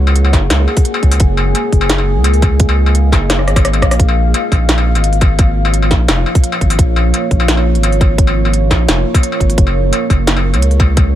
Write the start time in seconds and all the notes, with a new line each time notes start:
Already playing: C#2 A#3 G#4 C#5 F#5
0.07 struck metal
0.16 closed hi-hat
0.25 struck metal
0.33 F#1, kick, snare, open hi-hat
0.50 C#2, snare, closed hi-hat, struck metal
0.68 struck metal
0.77 kick, open hi-hat
0.85 closed hi-hat
0.94 struck metal
1.02 C#2 F5, kick, closed hi-hat
1.11 open hi-hat, struck metal
1.20 F#1, kick, closed hi-hat
1.37 struck metal
1.43 D#5
1.55 closed hi-hat, struck metal
1.72 F#1, kick, open hi-hat
1.81 struck metal
1.90 snare, closed hi-hat
1.98 struck metal
2.16 C#2
2.24 closed hi-hat, struck metal
2.34 open hi-hat
2.42 kick, closed hi-hat, struck metal
2.60 kick, closed hi-hat
2.69 struck metal
2.86 struck metal
2.95 closed hi-hat
3.12 F#1, kick, snare, open hi-hat, struck metal
3.30 cross-stick, snare, closed hi-hat, struck metal
3.39 cross-stick
3.47 G#1, cross-stick, open hi-hat
3.56 kick, cross-stick, open hi-hat, struck metal
3.65 cross-stick, closed hi-hat
3.73 closed hi-hat, struck metal
3.82 A#1, kick, cross-stick, closed hi-hat
3.91 cross-stick, open hi-hat
4.00 A#1, kick, closed hi-hat
4.09 F4, struck metal
4.23 C#5
4.34 closed hi-hat, struck metal
4.52 A#1, kick, open hi-hat, struck metal
4.69 snare, closed hi-hat
4.78 struck metal
4.95 G#1, closed hi-hat, struck metal
5.04 closed hi-hat
5.13 open hi-hat
5.21 kick, closed hi-hat, struck metal
5.39 kick, closed hi-hat, struck metal
5.65 struck metal
5.74 closed hi-hat
5.82 struck metal
5.91 A#1, kick, snare, open hi-hat
6.08 F1, snare, closed hi-hat, struck metal
6.26 struck metal
6.35 kick, open hi-hat
6.44 closed hi-hat
6.52 struck metal
6.61 G#1, kick, closed hi-hat
6.70 open hi-hat, struck metal
6.79 A#1, kick, closed hi-hat
6.96 struck metal
7.14 closed hi-hat, struck metal
7.31 A#1, kick, open hi-hat
7.40 struck metal
7.48 snare, closed hi-hat
7.57 struck metal
7.75 G#1, closed hi-hat
7.83 closed hi-hat, struck metal
7.92 open hi-hat
8.01 kick, closed hi-hat, struck metal
8.18 kick, closed hi-hat
8.27 struck metal
8.45 struck metal
8.54 closed hi-hat
8.71 A#1, kick, snare, open hi-hat, struck metal
8.88 F1, snare, closed hi-hat, struck metal
9.14 kick, open hi-hat, struck metal
9.23 closed hi-hat
9.32 struck metal
9.40 G#1, kick, closed hi-hat
9.50 open hi-hat
9.58 F#1, kick, closed hi-hat
9.67 struck metal
9.73 G#4
9.93 closed hi-hat, struck metal
10.10 F#1, kick, open hi-hat, struck metal
10.27 F#5, snare, closed hi-hat
10.37 struck metal
10.54 C#2, closed hi-hat, struck metal
10.62 closed hi-hat
10.71 open hi-hat
10.80 kick, closed hi-hat, struck metal
10.97 kick, closed hi-hat, struck metal